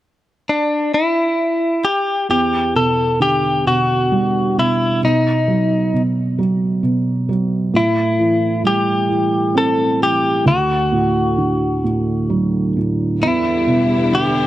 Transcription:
0.49 D4
0.94 E4
1.85 G4
2.29 E2 G4
2.75 B2 A4
3.20 D3 G4
3.66 B2 F#4
4.12 G3
4.58 B2 E4
5.03 B2 D#4
5.48 F#3
5.94 B2
6.39 F#3
6.83 B2
7.29 F#3
7.74 A2 E4
8.19 E3
8.64 G3 G4
9.09 E3
9.55 C4 A4
10.01 E3 G4
10.46 D2 F#4
10.92 A2
11.38 D3
11.84 A2
12.30 F#3
12.77 A2
13.21 E2 D3 G3 B3 E4
13.67 B2
14.12 D3 G4

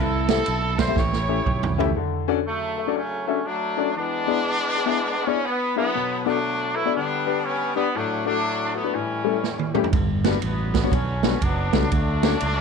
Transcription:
Already playing: C2 C3
0.00 E4 A4
0.28 C4 E4 G4 A4 E5, snare, ride bell
0.46 B1, ride bell
0.78 A4 C5 D5, kick, snare, ride bell
0.88 C4 E4 G4 A4 E5
0.96 A1 A2 E4 G4 C#5, kick, snare
1.13 snare
1.28 C#4 E4 G4 A4 E5
1.46 B1, kick, mid tom
1.63 floor tom
1.78 C#2 C#4 E4 G4 A4 E5, floor tom
1.97 D3
2.28 C#4 D4 F#4 A4 D5
2.46 C#3 F#3 A3
2.78 A4 E5
2.87 C#4 D4 F#4 A4 D5
2.95 F#3 A3 C#4
3.27 C#4 D4 F#4 A4 E5
3.45 F#3 A3 D4
3.77 C#4 D4 F#4 A4 D5
3.95 E3 G#3 B3 D4
4.27 B3 D4 E4 G#4 D5
4.77 G#4 B4
4.86 B3 D4 E4 G#4 E5
5.25 B3 C#4 D4 E4 G#4 D5
5.44 B3
5.75 D3 F#3 B3 D4 E4 G#4 E5
5.95 B2
6.25 F#3 A3 B3 D4 F#4 A4 D5
6.75 E4 A4 B4
6.85 B3 D4 F#4 A4 D5
6.94 D3 G3 B3 D4
7.26 D4 G4 B4
7.43 C#4
7.75 B3 D4 G4 D5
7.94 A2 F#3 A3 D4
8.25 F#3 A3 D4 F#4 A4
8.75 B3 F#4 A4
8.84 D4 F#4 B4
8.94 A2 E3 G3 C#4
9.24 G3 A3 C#4 E4 A4
9.44 snare
9.59 high tom
9.74 G3 A3 C#4 E4 G4, mid tom
9.84 floor tom
9.93 G1 G2, kick, ride bell
10.24 G3 B3 D4 F#4 B4, snare, ride bell
10.42 A1 D3 F#3 B3, ride bell
10.74 F#4 B4, kick, snare, ride bell
10.84 G3 B3 D4 F#4 C#5
10.91 B1 F#3 C#4, kick, ride bell
11.23 G3 B3 D4 F#4 B4, snare, ride bell
11.41 F#1 F#3 B3 D4, kick, ride bell
11.73 C#2 G3 B3 D4 F#4 A4, kick, snare, ride bell
11.91 D2 D3 F#3 A3 D4, kick, ride bell
12.23 A3 C#4 D4 F#4 C#5, snare, ride bell
12.40 C#2, ride bell

